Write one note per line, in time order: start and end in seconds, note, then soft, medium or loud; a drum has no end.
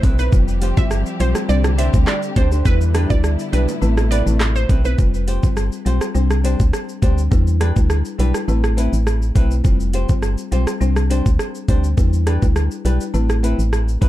0.00 0.30 B1 loud
0.00 0.31 C3 medium
0.00 0.31 A3 medium
0.00 0.30 B3 medium
0.00 0.19 C4 medium
0.00 0.30 E4 medium
0.00 0.18 E4 medium
0.00 kick loud
0.00 closed hi-hat medium
0.00 low bongo medium
0.00 shaker medium
0.04 0.18 B4 medium
0.19 0.32 C4 medium
0.19 0.32 E4 medium
0.19 0.32 B4 medium
0.19 0.29 B4 medium
0.19 shaker medium
0.32 0.73 F1 loud
0.32 1.48 F3 medium
0.32 3.78 G3 medium
0.32 0.73 G3 medium
0.32 2.63 C4 medium
0.32 0.73 C4 medium
0.32 0.73 F4 medium
0.32 1.48 G4 medium
0.32 0.74 C5 loud
0.32 kick loud
0.32 shaker medium
0.48 shaker medium
0.62 0.80 F4 medium
0.62 0.80 G4 medium
0.62 0.80 C5 medium
0.62 closed hi-hat medium
0.62 shaker medium
0.77 1.04 G1 loud
0.77 1.17 G3 medium
0.77 1.17 C4 medium
0.77 1.17 F4 medium
0.77 1.17 C5 medium
0.77 0.87 E5 medium
0.77 kick medium
0.77 high bongo medium
0.77 shaker medium
0.91 cross-stick medium
0.91 shaker medium
1.06 shaker medium
1.20 1.34 B1 medium
1.20 1.47 G3 medium
1.20 1.47 C4 medium
1.20 1.38 F4 medium
1.20 1.47 F4 medium
1.20 1.35 G4 medium
1.20 1.47 C5 medium
1.20 1.32 C5 medium
1.20 1.34 C5 medium
1.20 closed hi-hat medium
1.20 shaker medium
1.35 muted nylon-string guitar stroke soft
1.35 cross-stick medium
1.35 high bongo medium
1.35 shaker medium
1.49 1.90 C2 loud
1.49 3.80 D3 medium
1.49 1.70 G3 loud
1.49 1.70 C4 medium
1.49 1.70 D4 medium
1.49 2.64 G4 medium
1.49 1.71 C5 loud
1.49 1.61 D5 medium
1.49 shaker medium
1.64 cross-stick medium
1.64 high bongo medium
1.64 shaker soft
1.78 1.96 D4 medium
1.78 1.96 G4 medium
1.78 1.97 C5 loud
1.78 1.90 E5 medium
1.78 closed hi-hat medium
1.78 shaker medium
1.93 2.06 D2 medium
1.93 2.14 G3 medium
1.93 2.14 C4 medium
1.93 2.14 D4 medium
1.93 2.14 C5 medium
1.93 kick loud
1.93 shaker medium
2.07 2.19 D5 medium
2.07 cross-stick medium
2.07 clap medium
2.07 high bongo medium
2.07 shaker medium
2.23 shaker soft
2.36 2.63 D2 medium
2.36 2.51 D4 medium
2.36 2.51 G4 loud
2.36 2.48 C5 medium
2.36 2.50 C5 medium
2.36 kick loud
2.36 closed hi-hat medium
2.36 low bongo medium
2.36 shaker medium
2.52 2.65 D4 soft
2.52 2.65 G4 medium
2.52 2.64 C5 medium
2.52 shaker medium
2.65 3.06 E2 loud
2.65 3.06 G3 medium
2.65 4.96 B3 medium
2.65 3.06 D4 medium
2.65 3.06 E4 medium
2.65 4.96 E4 medium
2.65 2.77 B4 loud
2.65 3.07 B4 loud
2.65 kick loud
2.65 shaker medium
2.81 shaker medium
2.94 3.12 D4 medium
2.94 3.13 G4 medium
2.94 3.13 B4 medium
2.94 cross-stick loud
2.94 closed hi-hat medium
2.94 shaker medium
3.10 3.37 D2 medium
3.10 3.49 G3 medium
3.10 3.50 D4 medium
3.10 3.50 E4 medium
3.10 3.50 B4 medium
3.10 3.20 D5 medium
3.10 kick medium
3.10 high bongo medium
3.10 shaker medium
3.24 cross-stick medium
3.24 shaker medium
3.39 shaker medium
3.52 3.67 B1 loud
3.52 3.80 G3 medium
3.52 3.71 D4 medium
3.52 3.80 D4 medium
3.52 3.80 E4 medium
3.52 3.68 G4 medium
3.52 3.64 B4 medium
3.52 3.80 B4 medium
3.52 3.67 B4 medium
3.52 closed hi-hat medium
3.52 shaker medium
3.68 muted nylon-string guitar stroke medium
3.68 high bongo medium
3.68 shaker medium
3.82 4.23 A1 loud
3.82 4.97 C3 medium
3.82 4.03 A3 loud
3.82 4.97 A3 medium
3.82 4.03 C4 medium
3.82 4.03 E4 medium
3.82 4.03 B4 loud
3.82 shaker medium
3.97 cross-stick medium
3.97 high bongo medium
3.97 shaker soft
4.11 4.29 C4 loud
4.11 4.29 E4 loud
4.11 4.30 B4 loud
4.11 4.22 D5 medium
4.11 closed hi-hat medium
4.11 shaker medium
4.26 4.66 A1 medium
4.26 4.47 A3 medium
4.26 4.47 C4 medium
4.26 4.47 E4 medium
4.26 4.47 B4 medium
4.26 shaker medium
4.40 cross-stick medium
4.40 clap medium
4.40 high bongo medium
4.40 shaker medium
4.56 4.66 C5 medium
4.56 shaker soft
4.69 4.96 B1 loud
4.69 4.84 C4 medium
4.69 4.84 E4 medium
4.69 4.83 B4 loud
4.69 kick loud
4.69 closed hi-hat medium
4.69 low bongo medium
4.69 shaker medium
4.84 4.98 C4 medium
4.84 4.98 E4 medium
4.84 4.97 B4 medium
4.84 4.95 B4 medium
4.84 shaker medium
4.98 5.39 F1 loud
4.98 5.20 G3 medium
4.98 5.20 C4 medium
4.98 5.20 F4 medium
4.98 5.20 C5 loud
4.98 kick loud
4.98 shaker medium
5.14 shaker medium
5.27 5.46 F4 medium
5.27 5.46 G4 medium
5.27 5.46 C5 medium
5.27 closed hi-hat medium
5.27 shaker medium
5.43 5.70 G1 loud
5.43 5.63 G3 medium
5.43 5.63 C4 medium
5.43 5.64 F4 medium
5.43 5.64 C5 medium
5.43 kick medium
5.43 shaker medium
5.57 cross-stick medium
5.57 shaker medium
5.72 shaker medium
5.85 6.00 B1 medium
5.85 6.07 G3 medium
5.85 6.07 C4 medium
5.85 6.04 F4 medium
5.85 6.07 F4 medium
5.85 6.04 G4 medium
5.85 6.07 C5 medium
5.85 6.04 C5 medium
5.85 closed hi-hat medium
5.85 shaker medium
6.01 cross-stick medium
6.01 shaker medium
6.14 6.56 C2 loud
6.14 6.42 G3 medium
6.14 6.42 C4 medium
6.14 6.42 D4 medium
6.14 6.42 C5 loud
6.14 shaker medium
6.31 cross-stick medium
6.31 shaker soft
6.44 6.65 G3 medium
6.44 6.65 C4 medium
6.44 6.62 D4 medium
6.44 6.66 D4 medium
6.44 6.62 G4 loud
6.44 6.66 C5 medium
6.44 6.63 C5 loud
6.44 closed hi-hat medium
6.44 shaker medium
6.60 6.72 D2 medium
6.60 kick medium
6.60 shaker medium
6.73 cross-stick medium
6.73 shaker medium
6.89 shaker soft
7.02 7.29 D2 medium
7.02 7.29 G3 medium
7.02 7.29 C4 medium
7.02 7.20 D4 medium
7.02 7.29 D4 medium
7.02 7.21 G4 medium
7.02 7.29 C5 medium
7.02 7.21 C5 medium
7.02 kick loud
7.02 closed hi-hat medium
7.02 shaker soft
7.18 shaker medium
7.31 7.72 E2 loud
7.31 7.53 G3 medium
7.31 7.53 D4 medium
7.31 7.53 E4 medium
7.31 7.53 B4 loud
7.31 kick loud
7.31 shaker medium
7.47 shaker medium
7.60 7.79 D4 medium
7.60 7.79 G4 medium
7.60 7.79 B4 medium
7.60 cross-stick loud
7.60 closed hi-hat medium
7.60 shaker medium
7.76 8.03 D2 medium
7.76 7.96 G3 medium
7.76 7.96 D4 medium
7.76 7.96 E4 medium
7.76 7.97 B4 medium
7.76 kick medium
7.76 shaker medium
7.90 cross-stick medium
7.90 shaker medium
8.05 shaker medium
8.19 8.33 B1 loud
8.19 8.40 G3 medium
8.19 8.40 D4 medium
8.19 8.37 D4 medium
8.19 8.40 E4 medium
8.19 8.37 G4 medium
8.19 8.40 B4 medium
8.19 8.37 B4 medium
8.19 closed hi-hat medium
8.19 shaker soft
8.34 cross-stick medium
8.34 shaker medium
8.48 8.89 A1 loud
8.48 8.75 A3 loud
8.48 8.75 C4 medium
8.48 8.75 E4 medium
8.48 8.75 B4 loud
8.48 shaker medium
8.64 cross-stick medium
8.64 shaker soft
8.77 8.98 A3 medium
8.77 8.98 C4 medium
8.77 8.95 C4 medium
8.77 8.99 E4 medium
8.77 8.95 E4 loud
8.77 8.99 B4 medium
8.77 8.96 B4 loud
8.77 closed hi-hat medium
8.77 shaker medium
8.93 9.32 A1 medium
8.93 shaker medium
9.07 cross-stick medium
9.07 shaker medium
9.22 shaker soft
9.35 9.62 B1 loud
9.35 9.62 A3 medium
9.35 9.62 C4 medium
9.35 9.53 C4 medium
9.35 9.62 E4 medium
9.35 9.54 E4 medium
9.35 9.63 B4 medium
9.35 9.54 B4 medium
9.35 kick loud
9.35 closed hi-hat medium
9.35 shaker soft
9.51 shaker medium
9.64 10.05 F1 loud
9.64 9.86 G3 medium
9.64 9.86 C4 medium
9.64 9.86 F4 medium
9.64 9.86 C5 loud
9.64 kick loud
9.64 shaker medium
9.80 shaker medium
9.93 10.12 F4 medium
9.93 10.12 G4 medium
9.93 10.12 C5 loud
9.93 closed hi-hat medium
9.93 shaker medium
10.09 10.36 G1 loud
10.09 10.29 G3 medium
10.09 10.30 C4 medium
10.09 10.30 F4 medium
10.09 10.30 C5 medium
10.09 kick medium
10.09 shaker medium
10.22 cross-stick medium
10.22 shaker medium
10.38 shaker medium
10.52 10.66 B1 medium
10.52 10.73 G3 medium
10.52 10.73 C4 medium
10.52 10.70 F4 medium
10.52 10.73 F4 medium
10.52 10.70 G4 loud
10.52 10.74 C5 medium
10.52 10.70 C5 medium
10.52 closed hi-hat medium
10.52 shaker soft
10.67 cross-stick medium
10.67 shaker medium
10.81 11.22 C2 loud
10.81 11.08 G3 loud
10.81 11.08 C4 medium
10.81 11.08 D4 medium
10.81 11.08 C5 loud
10.81 shaker medium
10.96 cross-stick medium
10.96 shaker soft
11.10 11.31 G3 medium
11.10 11.32 C4 medium
11.10 11.28 D4 medium
11.10 11.32 D4 medium
11.10 11.28 G4 medium
11.10 11.32 C5 medium
11.10 11.29 C5 loud
11.10 closed hi-hat medium
11.10 shaker medium
11.26 11.38 D2 medium
11.26 kick medium
11.26 shaker medium
11.39 cross-stick medium
11.39 shaker medium
11.55 shaker soft
11.68 11.95 D2 medium
11.68 11.95 G3 medium
11.68 11.95 C4 medium
11.68 11.86 D4 medium
11.68 11.96 D4 medium
11.68 11.87 G4 medium
11.68 11.96 C5 medium
11.68 11.87 C5 medium
11.68 kick loud
11.68 closed hi-hat medium
11.68 shaker soft
11.84 shaker medium
11.97 12.38 E2 loud
11.97 12.19 G3 medium
11.97 12.19 D4 medium
11.97 12.19 E4 medium
11.97 12.19 B4 loud
11.97 kick loud
11.97 shaker medium
12.13 shaker medium
12.27 12.45 D4 medium
12.27 12.45 G4 medium
12.27 12.45 B4 medium
12.27 cross-stick medium
12.27 closed hi-hat medium
12.27 shaker medium
12.42 12.69 D2 medium
12.42 12.62 G3 medium
12.42 12.62 D4 medium
12.42 12.62 E4 medium
12.42 12.63 B4 medium
12.42 kick medium
12.42 shaker medium
12.56 cross-stick medium
12.56 shaker medium
12.71 shaker medium
12.85 12.99 B1 loud
12.85 13.06 G3 medium
12.85 13.03 D4 medium
12.85 13.06 D4 medium
12.85 13.06 E4 medium
12.85 13.03 G4 medium
12.85 13.06 B4 medium
12.85 13.03 B4 medium
12.85 closed hi-hat medium
12.85 shaker soft
13.01 shaker medium
13.14 13.55 A1 loud
13.14 13.41 A3 medium
13.14 13.41 C4 medium
13.14 13.41 E4 medium
13.14 13.41 B4 loud
13.14 shaker medium
13.30 cross-stick medium
13.30 shaker soft
13.43 13.64 A3 medium
13.43 13.61 C4 medium
13.43 13.64 C4 medium
13.43 13.65 E4 medium
13.43 13.61 E4 loud
13.43 13.65 B4 medium
13.43 13.62 B4 loud
13.43 closed hi-hat medium
13.43 shaker medium
13.59 13.98 A1 medium
13.59 shaker medium
13.73 cross-stick medium
13.73 shaker medium
13.88 shaker soft
14.01 14.09 B1 loud
14.01 14.09 A3 medium
14.01 14.09 C4 medium
14.01 14.09 E4 medium
14.01 14.09 B4 medium
14.01 14.09 B4 loud
14.01 kick loud
14.01 closed hi-hat medium
14.01 shaker medium